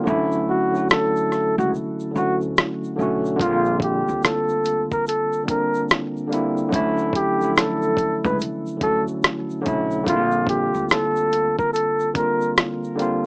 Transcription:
0.04 upright bass D2, tine electric piano D3 F#3 A3, shaker
0.09 tine electric piano C#4 E4
0.32 shaker
0.50 muted trumpet F#4
0.72 tine electric piano D3 F#3 A3, shaker
0.76 tine electric piano C#4 F#4
0.90 muted trumpet A4, cross-stick, shaker
1.16 shaker
1.32 cross-stick, shaker
1.58 upright bass C#2, muted trumpet F#4, shaker
1.75 shaker
2.00 shaker
2.12 tine electric piano D3 F#3 A3
2.16 upright bass D2, tine electric piano C#4 F#4, muted trumpet F#4, shaker
2.41 shaker
2.57 cross-stick, shaker
2.84 shaker
2.96 upright bass B1, tine electric piano D3 F#3 A3
3.00 tine electric piano C#4 F#4, shaker
3.25 shaker
3.36 upright bass A#1, tine electric piano D3 G3 A#3, kick, shaker
3.41 tine electric piano C4 F4, muted trumpet F4, closed hi-hat
3.65 shaker
3.80 muted trumpet G4, kick, closed hi-hat
4.08 upright bass D2, shaker
4.22 muted trumpet A4, cross-stick, closed hi-hat, shaker
4.49 shaker
4.65 closed hi-hat, shaker
4.91 muted trumpet A#4, kick, shaker
5.07 muted trumpet A4, closed hi-hat, shaker
5.32 shaker
5.43 tine electric piano D3 G3 A#3
5.48 tine electric piano C4 D4, muted trumpet A#4, kick, closed hi-hat, shaker
5.74 shaker
5.89 cross-stick, closed hi-hat, shaker
6.17 shaker
6.27 tine electric piano D3 G3 A#3
6.32 tine electric piano C4 E4, closed hi-hat, shaker
6.57 shaker
6.69 tine electric piano D3 F#3 A3, kick, shaker
6.73 upright bass D2, tine electric piano C#4 E4, closed hi-hat
6.98 shaker
7.13 muted trumpet G4, kick, closed hi-hat
7.38 tine electric piano D3 F3 A3, shaker
7.43 tine electric piano F#3 C#4 E4
7.56 muted trumpet A4, cross-stick, closed hi-hat, shaker
7.82 shaker
7.97 kick, closed hi-hat, shaker
8.25 upright bass C#2, muted trumpet B4, kick, shaker
8.40 closed hi-hat, shaker
8.66 shaker
8.77 tine electric piano D3 F#3 A3
8.81 upright bass D2, tine electric piano C#4 F#4, muted trumpet A4, kick, closed hi-hat, shaker
9.08 shaker
9.23 cross-stick, closed hi-hat, shaker
9.50 shaker
9.62 tine electric piano D3 F#3 A3
9.66 upright bass B1, tine electric piano C#4 E4, kick, closed hi-hat, shaker
9.91 shaker
10.03 upright bass A#1, tine electric piano D3 G3 A#3, kick, shaker
10.08 tine electric piano C4 E4, muted trumpet F4, closed hi-hat
10.16 tine electric piano F4
10.31 shaker
10.47 muted trumpet G4, kick, closed hi-hat
10.75 upright bass D2, shaker
10.89 muted trumpet A4, cross-stick, closed hi-hat, shaker
11.16 shaker
11.32 closed hi-hat, shaker
11.58 muted trumpet A#4, kick, shaker
11.73 muted trumpet A4, closed hi-hat, shaker
12.00 shaker
12.13 tine electric piano D3 G3 A#3, muted trumpet A#4, kick, closed hi-hat, shaker
12.18 tine electric piano C4 F4
12.41 shaker
12.57 cross-stick, closed hi-hat, shaker
12.84 shaker
12.95 tine electric piano D3 G3 A#3
12.99 tine electric piano C4 F4, closed hi-hat, shaker

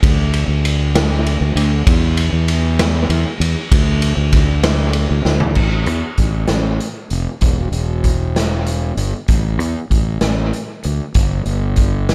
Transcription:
0.03 fingered electric bass D2, kick, ride
0.34 ride
0.48 fingered electric bass D2
0.65 ride
0.95 snare, ride
1.26 ride
1.41 fingered electric bass D2
1.55 fingered electric bass D2, ride
1.87 fingered electric bass E2, kick, ride
2.17 ride
2.33 fingered electric bass E2
2.48 ride
2.79 snare, ride
3.09 fingered electric bass E2, ride
3.40 fingered electric bass E2, ride
3.72 fingered electric bass D2, kick, ride
4.02 ride
4.17 fingered electric bass D2
4.33 kick, ride
4.63 snare, ride
4.93 ride
5.11 fingered electric bass D2
5.25 fingered electric bass D2, snare
5.40 floor tom
5.55 fingered electric bass A1, kick, crash
5.86 fingered electric bass E2, closed hi-hat
6.18 fingered electric bass A1, kick, closed hi-hat
6.47 fingered electric bass A1, snare, closed hi-hat
6.80 closed hi-hat
7.10 fingered electric bass F1, closed hi-hat
7.41 fingered electric bass E1, kick, closed hi-hat
7.72 fingered electric bass E1, closed hi-hat
8.04 kick, closed hi-hat
8.36 snare, closed hi-hat
8.66 closed hi-hat
8.97 fingered electric bass G1, closed hi-hat
9.28 fingered electric bass A1, kick, closed hi-hat
9.59 fingered electric bass E2, closed hi-hat
9.90 fingered electric bass A1, kick, closed hi-hat
10.21 fingered electric bass A1, snare, closed hi-hat
10.53 closed hi-hat
10.83 fingered electric bass D2, closed hi-hat
11.14 fingered electric bass G1, kick, closed hi-hat
11.45 fingered electric bass G1, closed hi-hat
11.76 kick, closed hi-hat
12.09 snare, closed hi-hat

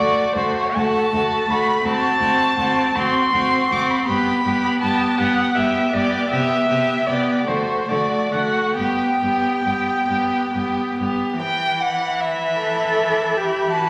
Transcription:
Already playing: viola A3, violin F#4 D5
0.33 cello D2, viola A3, violin F#4 C5
0.75 cello D2, viola A3, violin F#4 A5
1.13 cello D2, viola A3, violin F#4
1.49 cello D2, viola A3, violin F#4 B5
1.83 cello D2, viola C4, violin F#4 A5
2.20 cello D2, viola C4, violin F#4
2.57 cello D2, viola C4, violin F#4
2.94 cello D2, viola C4, violin F#4 C6
3.32 cello D2, viola C4, violin F#4
3.70 cello D2, viola C4, violin F#4 D6
3.82 violin C6
3.90 violin B5
3.98 violin C6
4.06 cello G2, viola B3, violin G4 B5
4.44 cello G2, viola B3, violin G4
4.81 cello G2, viola B3, violin G4 A5
5.17 cello G2, viola B3, violin G4 F#5
5.54 cello G2, viola B3, violin G4 E5
5.92 cello G2, viola B3, violin G4 D5
6.30 cello C3, viola B3, violin G4 E5
6.67 cello C3, viola B3, violin G4
7.05 cello C3, viola B3, violin G4 D5
7.46 cello D3, viola A3, violin F#4 C5
7.88 cello D3, viola A3, violin F#4 D5
8.32 cello D3, viola A3, violin F#4 F#5
8.76 cello G2, viola B3, violin G4 G5
9.22 cello G2, viola B3, violin G4
9.64 cello G2, viola B3, violin G4
10.08 cello G2, viola B3, violin G4
10.53 cello G2, viola B3, violin G4
10.99 cello G2, viola B3, violin G4
11.42 viola E3, violin G5 B5
11.80 violin F#5
12.20 violin E5
12.59 cello A4
13.37 cello G4
13.73 viola E3, cello F#4, violin A5

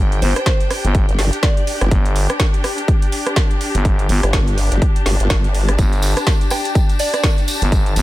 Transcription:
Already playing: fm bass G1, string section D4 G4 G5
0.12 closed hi-hat
0.22 fm bass G1, synth bell C5, open hi-hat
0.36 synth bell C5, cross-stick, closed hi-hat
0.46 synth bell C5, kick, snare, closed hi-hat
0.60 closed hi-hat
0.70 cross-stick, open hi-hat
0.84 fm bass G1, closed hi-hat
0.95 kick, closed hi-hat
1.09 wobble bass G1, closed hi-hat
1.19 snare, open hi-hat
1.33 closed hi-hat
1.43 synth bell D5, kick, snare, closed hi-hat
1.57 closed hi-hat
1.67 open hi-hat
1.81 wobble bass G1, cross-stick, closed hi-hat
1.91 fm bass G1, kick, closed hi-hat
2.06 closed hi-hat
2.16 open hi-hat
2.30 cross-stick, closed hi-hat
2.40 kick, snare, closed hi-hat
2.54 closed hi-hat
2.64 cross-stick, open hi-hat
2.78 closed hi-hat
2.88 kick, closed hi-hat
3.02 closed hi-hat
3.12 open hi-hat
3.26 cross-stick, closed hi-hat
3.36 kick, snare, closed hi-hat
3.51 closed hi-hat
3.61 open hi-hat
3.75 fm bass G1, closed hi-hat
3.85 kick, closed hi-hat
3.99 closed hi-hat
4.09 fm bass G1, open hi-hat
4.23 wobble bass G1, cross-stick, closed hi-hat
4.33 kick, snare, closed hi-hat
4.48 closed hi-hat
4.58 open hi-hat
4.72 wobble bass G1, closed hi-hat
4.82 kick, closed hi-hat
4.87 string section A5
4.96 closed hi-hat
5.06 wobble bass G1, snare, open hi-hat
5.20 wobble bass G1, closed hi-hat
5.30 wobble bass G1, kick, snare, closed hi-hat
5.44 closed hi-hat
5.54 open hi-hat
5.69 cross-stick, closed hi-hat
5.78 fm bass G1, kick, closed hi-hat, tambourine
5.92 closed hi-hat, tambourine
6.02 open hi-hat, tambourine
6.17 cross-stick, closed hi-hat, tambourine
6.27 kick, snare, closed hi-hat, tambourine
6.41 closed hi-hat, tambourine
6.50 synth bell G5, cross-stick, open hi-hat, tambourine
6.64 closed hi-hat, tambourine
6.75 kick, closed hi-hat, tambourine
6.89 closed hi-hat, tambourine
6.99 synth bell D5, open hi-hat, tambourine
7.14 synth bell D5, cross-stick, closed hi-hat, tambourine
7.23 kick, snare, closed hi-hat, tambourine
7.38 closed hi-hat, tambourine
7.48 open hi-hat, tambourine
7.62 fm bass G1, closed hi-hat, tambourine
7.72 kick, closed hi-hat, tambourine
7.86 closed hi-hat, tambourine
7.96 fm bass G1, open hi-hat, tambourine

